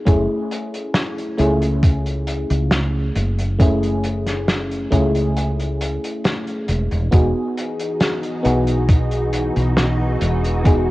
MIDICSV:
0, 0, Header, 1, 5, 480
1, 0, Start_track
1, 0, Key_signature, 4, "major"
1, 0, Tempo, 882353
1, 37, Time_signature, 4, 2, 24, 8
1, 5934, End_track
2, 0, Start_track
2, 0, Title_t, "String machine"
2, 0, Program_c, 0, 50
2, 3877, Note_on_c, 0, 52, 85
2, 3877, Note_on_c, 0, 63, 79
2, 3877, Note_on_c, 0, 66, 77
2, 3877, Note_on_c, 0, 68, 94
2, 5934, Note_off_c, 0, 52, 0
2, 5934, Note_off_c, 0, 63, 0
2, 5934, Note_off_c, 0, 66, 0
2, 5934, Note_off_c, 0, 68, 0
2, 5934, End_track
3, 0, Start_track
3, 0, Title_t, "FM electric piano"
3, 0, Program_c, 1, 5
3, 0, Control_c, 1, 64, 127
3, 29, Note_on_c, 1, 57, 86
3, 33, Note_on_c, 1, 61, 79
3, 39, Note_on_c, 1, 64, 78
3, 43, Control_c, 1, 64, 0
3, 44, Note_on_c, 1, 68, 92
3, 135, Control_c, 1, 64, 127
3, 725, Note_off_c, 1, 57, 0
3, 727, Note_off_c, 1, 61, 0
3, 730, Note_off_c, 1, 64, 0
3, 733, Note_off_c, 1, 68, 0
3, 748, Note_on_c, 1, 57, 93
3, 754, Note_on_c, 1, 61, 81
3, 759, Note_on_c, 1, 64, 81
3, 765, Note_on_c, 1, 68, 95
3, 1925, Note_off_c, 1, 57, 0
3, 1928, Note_off_c, 1, 61, 0
3, 1930, Note_off_c, 1, 64, 0
3, 1933, Note_off_c, 1, 68, 0
3, 1950, Note_on_c, 1, 57, 89
3, 1955, Note_on_c, 1, 61, 81
3, 1961, Note_on_c, 1, 64, 79
3, 1966, Note_on_c, 1, 68, 97
3, 2646, Note_off_c, 1, 57, 0
3, 2648, Note_off_c, 1, 61, 0
3, 2651, Note_off_c, 1, 64, 0
3, 2654, Note_off_c, 1, 68, 0
3, 2669, Note_on_c, 1, 57, 90
3, 2674, Note_on_c, 1, 61, 80
3, 2679, Note_on_c, 1, 64, 83
3, 2685, Note_on_c, 1, 68, 101
3, 3845, Note_off_c, 1, 57, 0
3, 3848, Note_off_c, 1, 61, 0
3, 3850, Note_off_c, 1, 64, 0
3, 3853, Note_off_c, 1, 68, 0
3, 3869, Note_on_c, 1, 59, 88
3, 3875, Note_on_c, 1, 63, 78
3, 3880, Note_on_c, 1, 66, 78
3, 3885, Control_c, 1, 64, 0
3, 3885, Note_on_c, 1, 68, 96
3, 3987, Control_c, 1, 64, 127
3, 4565, Note_off_c, 1, 59, 0
3, 4568, Note_off_c, 1, 63, 0
3, 4571, Note_off_c, 1, 66, 0
3, 4573, Note_off_c, 1, 68, 0
3, 4587, Note_on_c, 1, 59, 90
3, 4593, Note_on_c, 1, 63, 83
3, 4598, Note_on_c, 1, 66, 82
3, 4604, Note_on_c, 1, 68, 101
3, 5764, Note_off_c, 1, 59, 0
3, 5767, Note_off_c, 1, 63, 0
3, 5770, Note_off_c, 1, 66, 0
3, 5773, Note_off_c, 1, 68, 0
3, 5788, Note_on_c, 1, 59, 85
3, 5793, Note_on_c, 1, 63, 78
3, 5799, Note_on_c, 1, 66, 79
3, 5805, Note_on_c, 1, 68, 97
3, 5934, Note_off_c, 1, 59, 0
3, 5934, Note_off_c, 1, 63, 0
3, 5934, Note_off_c, 1, 66, 0
3, 5934, Note_off_c, 1, 68, 0
3, 5934, End_track
4, 0, Start_track
4, 0, Title_t, "Fretless electric bass"
4, 0, Program_c, 2, 35
4, 37, Note_on_c, 2, 30, 90
4, 139, Note_off_c, 2, 30, 0
4, 757, Note_on_c, 2, 37, 93
4, 1325, Note_off_c, 2, 37, 0
4, 1361, Note_on_c, 2, 37, 92
4, 1683, Note_off_c, 2, 37, 0
4, 1716, Note_on_c, 2, 30, 93
4, 2643, Note_off_c, 2, 30, 0
4, 2676, Note_on_c, 2, 37, 92
4, 3244, Note_off_c, 2, 37, 0
4, 3636, Note_on_c, 2, 28, 94
4, 3738, Note_off_c, 2, 28, 0
4, 3762, Note_on_c, 2, 28, 80
4, 3856, Note_off_c, 2, 28, 0
4, 3877, Note_on_c, 2, 28, 97
4, 3978, Note_off_c, 2, 28, 0
4, 4599, Note_on_c, 2, 35, 93
4, 5166, Note_off_c, 2, 35, 0
4, 5202, Note_on_c, 2, 35, 90
4, 5523, Note_off_c, 2, 35, 0
4, 5556, Note_on_c, 2, 28, 93
4, 5934, Note_off_c, 2, 28, 0
4, 5934, End_track
5, 0, Start_track
5, 0, Title_t, "Drums"
5, 35, Note_on_c, 9, 42, 86
5, 37, Note_on_c, 9, 36, 104
5, 89, Note_off_c, 9, 42, 0
5, 91, Note_off_c, 9, 36, 0
5, 278, Note_on_c, 9, 42, 81
5, 332, Note_off_c, 9, 42, 0
5, 402, Note_on_c, 9, 42, 64
5, 456, Note_off_c, 9, 42, 0
5, 512, Note_on_c, 9, 38, 117
5, 518, Note_on_c, 9, 42, 90
5, 566, Note_off_c, 9, 38, 0
5, 572, Note_off_c, 9, 42, 0
5, 644, Note_on_c, 9, 42, 53
5, 698, Note_off_c, 9, 42, 0
5, 753, Note_on_c, 9, 42, 81
5, 807, Note_off_c, 9, 42, 0
5, 881, Note_on_c, 9, 42, 65
5, 935, Note_off_c, 9, 42, 0
5, 997, Note_on_c, 9, 36, 106
5, 999, Note_on_c, 9, 42, 87
5, 1051, Note_off_c, 9, 36, 0
5, 1054, Note_off_c, 9, 42, 0
5, 1122, Note_on_c, 9, 42, 48
5, 1177, Note_off_c, 9, 42, 0
5, 1237, Note_on_c, 9, 42, 87
5, 1291, Note_off_c, 9, 42, 0
5, 1362, Note_on_c, 9, 42, 59
5, 1416, Note_off_c, 9, 42, 0
5, 1474, Note_on_c, 9, 38, 108
5, 1475, Note_on_c, 9, 42, 85
5, 1528, Note_off_c, 9, 38, 0
5, 1529, Note_off_c, 9, 42, 0
5, 1716, Note_on_c, 9, 42, 78
5, 1770, Note_off_c, 9, 42, 0
5, 1842, Note_on_c, 9, 42, 66
5, 1896, Note_off_c, 9, 42, 0
5, 1957, Note_on_c, 9, 36, 110
5, 1958, Note_on_c, 9, 42, 95
5, 2011, Note_off_c, 9, 36, 0
5, 2012, Note_off_c, 9, 42, 0
5, 2083, Note_on_c, 9, 42, 47
5, 2137, Note_off_c, 9, 42, 0
5, 2195, Note_on_c, 9, 42, 83
5, 2249, Note_off_c, 9, 42, 0
5, 2320, Note_on_c, 9, 38, 32
5, 2320, Note_on_c, 9, 42, 63
5, 2374, Note_off_c, 9, 38, 0
5, 2375, Note_off_c, 9, 42, 0
5, 2438, Note_on_c, 9, 38, 104
5, 2440, Note_on_c, 9, 42, 80
5, 2492, Note_off_c, 9, 38, 0
5, 2494, Note_off_c, 9, 42, 0
5, 2565, Note_on_c, 9, 42, 53
5, 2619, Note_off_c, 9, 42, 0
5, 2676, Note_on_c, 9, 36, 56
5, 2676, Note_on_c, 9, 42, 79
5, 2731, Note_off_c, 9, 36, 0
5, 2731, Note_off_c, 9, 42, 0
5, 2801, Note_on_c, 9, 42, 70
5, 2856, Note_off_c, 9, 42, 0
5, 2919, Note_on_c, 9, 42, 82
5, 2973, Note_off_c, 9, 42, 0
5, 3043, Note_on_c, 9, 42, 51
5, 3097, Note_off_c, 9, 42, 0
5, 3158, Note_on_c, 9, 42, 87
5, 3212, Note_off_c, 9, 42, 0
5, 3283, Note_on_c, 9, 42, 66
5, 3338, Note_off_c, 9, 42, 0
5, 3395, Note_on_c, 9, 42, 77
5, 3399, Note_on_c, 9, 38, 118
5, 3449, Note_off_c, 9, 42, 0
5, 3453, Note_off_c, 9, 38, 0
5, 3520, Note_on_c, 9, 42, 50
5, 3574, Note_off_c, 9, 42, 0
5, 3635, Note_on_c, 9, 42, 81
5, 3689, Note_off_c, 9, 42, 0
5, 3761, Note_on_c, 9, 42, 68
5, 3815, Note_off_c, 9, 42, 0
5, 3873, Note_on_c, 9, 42, 92
5, 3877, Note_on_c, 9, 36, 113
5, 3928, Note_off_c, 9, 42, 0
5, 3931, Note_off_c, 9, 36, 0
5, 4120, Note_on_c, 9, 42, 87
5, 4175, Note_off_c, 9, 42, 0
5, 4241, Note_on_c, 9, 42, 69
5, 4296, Note_off_c, 9, 42, 0
5, 4355, Note_on_c, 9, 42, 91
5, 4357, Note_on_c, 9, 38, 111
5, 4409, Note_off_c, 9, 42, 0
5, 4411, Note_off_c, 9, 38, 0
5, 4479, Note_on_c, 9, 42, 58
5, 4533, Note_off_c, 9, 42, 0
5, 4597, Note_on_c, 9, 42, 88
5, 4651, Note_off_c, 9, 42, 0
5, 4718, Note_on_c, 9, 42, 66
5, 4772, Note_off_c, 9, 42, 0
5, 4836, Note_on_c, 9, 36, 113
5, 4837, Note_on_c, 9, 42, 93
5, 4891, Note_off_c, 9, 36, 0
5, 4891, Note_off_c, 9, 42, 0
5, 4958, Note_on_c, 9, 42, 57
5, 5012, Note_off_c, 9, 42, 0
5, 5075, Note_on_c, 9, 42, 97
5, 5129, Note_off_c, 9, 42, 0
5, 5201, Note_on_c, 9, 42, 67
5, 5256, Note_off_c, 9, 42, 0
5, 5315, Note_on_c, 9, 38, 106
5, 5319, Note_on_c, 9, 42, 89
5, 5369, Note_off_c, 9, 38, 0
5, 5373, Note_off_c, 9, 42, 0
5, 5555, Note_on_c, 9, 42, 99
5, 5609, Note_off_c, 9, 42, 0
5, 5682, Note_on_c, 9, 42, 68
5, 5736, Note_off_c, 9, 42, 0
5, 5795, Note_on_c, 9, 42, 87
5, 5796, Note_on_c, 9, 36, 123
5, 5849, Note_off_c, 9, 42, 0
5, 5850, Note_off_c, 9, 36, 0
5, 5934, End_track
0, 0, End_of_file